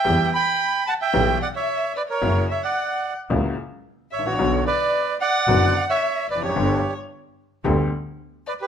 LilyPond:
<<
  \new Staff \with { instrumentName = "Violin" } { \time 4/4 \key b \minor \tempo 4 = 111 g''8 b''4 a''16 g''8. fis''16 e''8. d''16 cis''16~ | cis''8 e''16 fis''4 r4. r16 e''16 cis''16~ | cis''8 d''4 fis''4~ fis''16 e''8. d''16 cis''16~ | cis''8. r2 r8. d''16 b'16 | }
  \new Staff \with { instrumentName = "Bandoneon" } { \time 4/4 \key b \minor <e'' g''>8 <g'' b''>4 <fis'' a''>16 <e'' g''>8. <d'' fis''>16 <cis'' e''>8. <b' d''>16 <ais' cis''>16~ | <ais' cis''>8 <cis'' e''>16 <d'' fis''>4 r4. r16 <cis'' e''>16 <fis' cis''>16~ | <fis' cis''>8 <b' d''>4 <d'' fis''>4~ <d'' fis''>16 <cis'' e''>8. <b' d''>16 <g' cis''>16~ | <g' cis''>8. r2 r8. <b' d''>16 <g' b'>16 | }
  \new Staff \with { instrumentName = "Upright piano" } { \clef bass \time 4/4 \key b \minor <e, e g b g'>8 r4. <b,, b, e g b g'>8 r4. | <fis, cis fis ais e'>8 r4. <cis, cis fis ais e'>8 r4 r32 gis,,32 a,,32 ais,,32 | <b,, b, d fis b fis'>8 r4. <fis,, fis, d fis b fis'>8 r4 r32 e,32 eis,32 fis,32 | <g,, g, d g b g'>8 r4. <d, d g b g'>8 r4. | }
  \new Staff \with { instrumentName = "Double bass" } { \clef bass \time 4/4 \key b \minor e,8 r4. b,,8 r4. | fis,,8 r4. cis,8 r4 a,,8 | b,,8 r4. fis,,8 r4 eis,,8 | g,,8 r4. d,8 r4. | }
>>